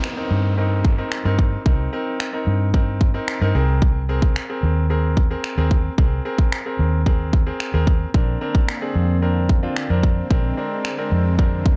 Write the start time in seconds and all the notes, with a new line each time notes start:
Already playing: C4 D#4 A#4, downlifter
0.04 finger snap
0.17 C4 D#4 A#4
0.31 G2
0.57 C4 D#4 A#4
0.85 kick
0.98 C4 D#4 A#4
1.12 finger snap
1.25 G2 C4 D#4 A#4
1.39 kick
1.66 C2 C4 D#4 A#4, kick
1.93 C4 D#4 A#4
2.20 finger snap
2.33 C4 D#4 A#4
2.47 G2
2.74 C4 D#4 A#4, kick
3.01 kick
3.14 C4 D#4 A#4
3.28 finger snap
3.41 G2 C4 D#4 A#4
3.55 C2 C4 G#4 A#4
3.82 kick
4.09 C4 G#4 A#4
4.22 kick
4.36 finger snap
4.49 C4 G#4 A#4
4.63 D#2
4.90 C4 G#4 A#4
5.17 kick
5.30 C4 G#4 A#4
5.44 finger snap
5.57 D#2 C4 G#4 A#4
5.71 kick
5.98 C2 C4 G#4 A#4, kick
6.25 C4 G#4 A#4
6.38 kick
6.52 finger snap
6.66 C4 G#4 A#4
6.79 D#2
7.06 C4 G#4 A#4, kick
7.33 kick
7.46 C4 G#4 A#4
7.60 finger snap
7.73 D#2 C4 G#4 A#4
7.87 kick
8.14 A#1 D3 A#3 C4 D4 A#4, kick
8.41 C4 D4 A#4
8.55 kick
8.69 finger snap
8.82 C4 D4 G#4
8.95 F2
9.22 C4 D4 A#4
9.49 kick
9.63 C4 D4 F4
9.77 finger snap
9.90 F2 C4 D4 A#4
10.03 kick
10.30 A#1 G#3 C4 D4 A#4, kick
10.57 C4 D4 A#4
10.85 finger snap
10.98 C4 D4 A#4
11.12 F2
11.38 C4 D4 A#4, kick
11.66 kick